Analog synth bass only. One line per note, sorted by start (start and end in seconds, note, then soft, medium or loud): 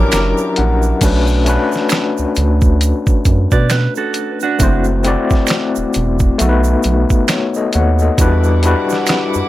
0.14 0.34 F#1 medium
0.59 0.93 A#1 medium
1.02 1.58 B1 loud
2.19 2.26 D2 soft
2.38 2.93 D2 medium
3.26 3.47 F#2 medium
3.53 3.88 B2 loud
4.61 5.16 F#1 loud
5.77 5.84 E1 soft
5.96 6.31 E1 medium
6.41 6.76 B1 loud
6.85 7.05 B1 medium
7.75 8.10 D#2 medium
8.19 8.74 E2 loud
9.36 9.43 F#2 soft